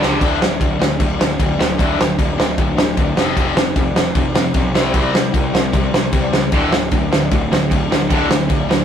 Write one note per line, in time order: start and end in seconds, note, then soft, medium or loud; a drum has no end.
0.00 0.16 C#2 loud
0.00 0.19 G2 medium
0.00 0.19 D3 medium
0.00 0.19 G3 medium
0.00 snare medium
0.19 0.39 D1 loud
0.19 0.38 D2 medium
0.19 0.39 A2 medium
0.19 0.39 D3 medium
0.19 kick loud
0.19 crash medium
0.40 0.58 D1 medium
0.40 0.58 D2 medium
0.40 0.58 A2 medium
0.40 snare loud
0.60 0.78 D1 medium
0.60 0.77 D2 medium
0.60 0.77 A2 medium
0.60 kick loud
0.60 crash medium
0.79 0.97 D1 medium
0.79 0.97 D2 medium
0.79 0.97 A2 medium
0.79 snare loud
1.00 1.17 D1 loud
1.00 1.17 D2 medium
1.00 1.17 A2 medium
1.00 kick loud
1.00 crash medium
1.19 1.37 D1 medium
1.19 1.37 D2 medium
1.19 1.37 A2 medium
1.19 snare loud
1.39 1.57 D1 medium
1.39 1.57 D2 medium
1.39 1.57 A2 medium
1.39 kick loud
1.39 crash medium
1.58 1.76 D1 medium
1.58 1.76 D2 medium
1.58 1.76 A2 medium
1.58 snare loud
1.78 1.96 D1 loud
1.78 1.97 D2 medium
1.78 1.97 A2 loud
1.78 1.97 D3 medium
1.78 kick loud
1.78 crash medium
1.98 2.16 D1 medium
1.98 2.16 D2 medium
1.98 2.16 A2 medium
1.98 snare loud
2.18 2.36 D1 medium
2.18 2.36 D2 medium
2.18 2.36 A2 medium
2.18 kick loud
2.18 crash medium
2.37 2.55 D1 medium
2.37 2.56 D2 medium
2.37 2.55 A2 medium
2.37 snare loud
2.57 2.75 D1 loud
2.57 2.75 D2 medium
2.57 2.75 A2 medium
2.57 kick loud
2.57 crash medium
2.77 2.95 D1 medium
2.77 2.95 D2 medium
2.77 2.95 A2 medium
2.77 snare loud
2.97 3.15 D1 medium
2.97 3.14 D2 medium
2.97 3.15 A2 medium
2.97 kick loud
2.97 crash medium
3.16 3.34 F1 loud
3.16 3.35 F2 medium
3.16 3.35 C3 medium
3.16 3.36 F3 loud
3.16 snare loud
3.37 3.54 F1 loud
3.37 3.55 F2 medium
3.37 3.55 C3 loud
3.37 3.55 F3 loud
3.37 kick loud
3.37 crash medium
3.55 3.73 F1 medium
3.55 3.74 F2 medium
3.55 3.74 C3 medium
3.55 snare loud
3.76 3.93 F1 medium
3.76 3.94 F2 medium
3.76 3.93 C3 medium
3.76 kick loud
3.76 crash medium
3.94 4.12 F1 medium
3.94 4.13 F2 medium
3.94 4.13 C3 medium
3.94 snare loud
4.15 4.33 F1 loud
4.15 4.32 F2 medium
4.15 4.33 C3 medium
4.15 kick loud
4.15 crash medium
4.34 4.52 F1 medium
4.34 4.52 F2 medium
4.34 4.52 C3 medium
4.34 snare loud
4.54 4.72 B1 medium
4.54 4.72 F2 medium
4.54 4.72 C3 medium
4.54 kick loud
4.54 crash medium
4.74 4.92 C2 loud
4.74 4.92 C3 medium
4.74 4.92 G3 medium
4.74 4.93 C4 loud
4.74 snare loud
4.93 5.12 C2 loud
4.93 5.12 C3 medium
4.93 5.12 G3 loud
4.93 5.13 C4 medium
4.93 kick medium
4.93 crash medium
5.13 5.31 C2 medium
5.13 5.31 C3 medium
5.13 5.31 G3 medium
5.13 snare loud
5.33 5.51 C2 medium
5.33 5.51 C3 medium
5.33 5.51 G3 medium
5.33 kick loud
5.33 crash medium
5.53 5.71 C2 medium
5.53 5.71 C3 medium
5.53 5.71 G3 medium
5.53 snare loud
5.73 5.91 C2 loud
5.73 5.90 C3 medium
5.73 5.90 G3 medium
5.73 kick loud
5.73 crash medium
5.92 6.10 C2 medium
5.92 6.11 C3 medium
5.92 6.11 G3 medium
5.92 snare loud
6.12 6.30 C2 medium
6.12 6.30 C3 medium
6.12 6.30 G3 medium
6.12 kick loud
6.12 crash medium
6.32 6.49 C#2 medium
6.32 6.50 C3 medium
6.32 6.50 G3 medium
6.32 snare loud
6.52 6.70 D1 loud
6.52 6.71 D2 medium
6.52 6.71 A2 loud
6.52 6.71 D3 loud
6.52 kick loud
6.52 crash medium
6.71 6.89 D1 medium
6.71 6.90 D2 medium
6.71 6.90 A2 medium
6.71 snare loud
6.91 7.09 D1 medium
6.91 7.09 D2 medium
6.91 7.10 A2 medium
6.91 kick loud
6.91 crash medium
7.11 7.28 D1 medium
7.11 7.29 D2 medium
7.11 7.29 A2 medium
7.11 snare loud
7.31 7.49 D1 loud
7.31 7.49 D2 medium
7.31 7.49 A2 medium
7.31 kick loud
7.31 crash medium
7.50 7.68 D1 loud
7.50 7.69 D2 medium
7.50 7.69 A2 medium
7.50 snare loud
7.71 7.88 D1 medium
7.71 7.88 D2 medium
7.71 7.89 A2 medium
7.71 kick loud
7.71 crash medium
7.90 8.08 D1 medium
7.90 8.09 D2 medium
7.90 8.09 A2 medium
7.90 snare loud
8.10 8.28 D1 loud
8.10 8.29 D2 medium
8.10 8.29 A2 medium
8.10 8.29 D3 loud
8.10 kick loud
8.10 crash medium
8.30 8.47 D1 medium
8.30 8.48 D2 medium
8.30 8.48 A2 medium
8.30 snare loud
8.49 8.67 D1 medium
8.49 8.67 D2 medium
8.49 8.67 A2 medium
8.49 kick loud
8.49 crash medium
8.69 8.85 D1 medium
8.69 8.85 D2 medium
8.69 8.85 A2 medium
8.69 snare loud